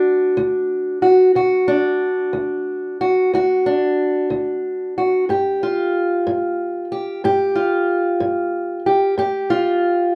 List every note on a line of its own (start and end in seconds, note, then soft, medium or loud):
0.00 1.67 D4 medium
0.00 1.01 F#4 medium
0.37 0.96 D2 medium
1.02 1.31 F#4 medium
1.35 1.94 D2 medium
1.35 2.99 F#4 medium
1.68 3.66 D4 medium
2.33 2.92 D2 medium
3.01 3.32 F#4 medium
3.33 3.91 D2 medium
3.33 4.96 F#4 medium
3.66 5.63 D4 medium
4.30 4.88 D2 medium
4.98 5.25 F#4 soft
5.29 5.86 G2 medium
5.29 6.91 G4 medium
5.63 7.54 F4 medium
6.27 6.84 G2 medium
6.92 7.24 G4 soft
7.24 7.82 G2 medium
7.24 8.85 G4 medium
7.55 9.14 F4 medium
8.20 8.79 G2 medium
8.86 9.14 G4 medium
9.18 9.76 G2 medium
9.18 10.15 G4 medium
9.50 10.15 F4 medium